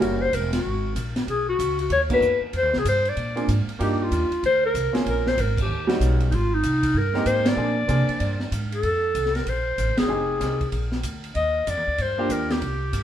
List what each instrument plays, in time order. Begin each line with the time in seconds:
0.00 upright bass F#1, grand piano G3 A#3 C#4 E4 F#4, clarinet A#4, kick, ride
0.22 clarinet C5
0.33 upright bass E1, clarinet A#4, kick, hi-hat pedal, ride
0.53 clarinet F#4, snare, ride
0.64 upright bass G#1, kick
0.96 upright bass A#1, kick, hi-hat pedal, ride
1.16 snare, ride
1.27 upright bass B1, clarinet G#4, kick, ride
1.49 clarinet F#4
1.59 upright bass C#2, kick, hi-hat pedal, ride
1.79 clarinet F#4, ride
1.90 upright bass D#2, clarinet C#5, kick, ride
2.10 grand piano A#3 B3 C#4 D#4 F#4, clarinet B4, kick, crash
2.21 upright bass F#2, hi-hat pedal
2.41 muted upright bass stroke
2.53 upright bass F2, kick, ride
2.58 clarinet C5
2.63 upright bass D#2
2.73 upright bass C2, snare
2.78 clarinet G#4
2.85 upright bass G2, clarinet C5, kick, hi-hat pedal, ride
3.05 ride
3.09 clarinet D5
3.17 upright bass A#2, kick, ride
3.36 grand piano A#3 C4 D4 F4 G#4, ride
3.48 upright bass G#2, kick, hi-hat pedal, ride
3.67 muted upright bass stroke, ride
3.79 upright bass G2, grand piano A#3 D4 D#4 F4 G4, clarinet G4, kick, ride
4.03 clarinet F4
4.11 upright bass D#2, kick, hi-hat pedal, ride
4.30 muted upright bass stroke, ride
4.43 upright bass D2, clarinet C5, kick, ride
4.66 clarinet A#4
4.74 upright bass C2, kick, hi-hat pedal, ride
4.93 grand piano A#3 C4 C#4 F4 G#4, snare, ride
5.06 upright bass A#1, clarinet A#4, kick, ride
5.27 clarinet C5, snare
5.38 upright bass G#1, clarinet A#4, kick, hi-hat pedal, ride
5.58 kick, crash
5.62 clarinet G4
5.67 upright bass D#2
5.87 grand piano G3 B3 C#4 D#4 F#4, snare, ride
6.00 upright bass B1, kick, hi-hat pedal, ride
6.20 ride
6.31 upright bass G#1, clarinet D#4 F4, kick, ride
6.54 clarinet D#4
6.63 upright bass C2, kick, hi-hat pedal, ride
6.83 kick, ride
6.94 upright bass G2, clarinet A#4, kick
7.14 grand piano G#3 A#3 C4 D#4 G4, snare
7.26 upright bass G#2, clarinet C5, kick, hi-hat pedal, ride
7.46 clarinet D5, snare, ride
7.56 upright bass A#2, grand piano F3 A#3 C4 D4 G#4
7.87 upright bass C3, grand piano F3 A#3 C4 D4 G#4, kick, hi-hat pedal, ride
8.09 muted upright bass stroke, ride
8.20 upright bass G2, kick, ride
8.40 snare
8.52 upright bass G#2, kick, hi-hat pedal, ride
8.72 clarinet A4, ride
8.83 upright bass F2, kick, ride
9.15 upright bass C2, kick, hi-hat pedal, ride
9.26 snare
9.35 clarinet A#4, snare, ride
9.46 upright bass A#1, clarinet C5, kick, ride
9.78 upright bass A1, kick, hi-hat pedal, ride
9.88 upright bass F1
9.97 upright bass D1, clarinet G#4, snare, ride
10.08 upright bass F1, grand piano C4 D#4 G4 G#4
10.40 upright bass C2, grand piano C4 D#4 G4 G#4, kick, snare, hi-hat pedal, ride
10.61 kick, ride
10.72 upright bass A#1, kick, ride
10.92 snare
11.03 upright bass D2, kick, hi-hat pedal, ride
11.24 ride
11.35 upright bass D#2, clarinet D#5, kick, ride
11.67 upright bass F2, clarinet D5, kick, hi-hat pedal, ride
11.77 upright bass D#2
11.87 upright bass D2
11.98 upright bass G2, clarinet C5, kick, ride
12.18 grand piano A#3 D4 F4 G4
12.29 upright bass D#2, clarinet A#4, kick, hi-hat pedal, ride
12.50 clarinet G4, snare, ride
12.61 upright bass C2, kick, ride
12.93 upright bass G2, kick, hi-hat pedal, ride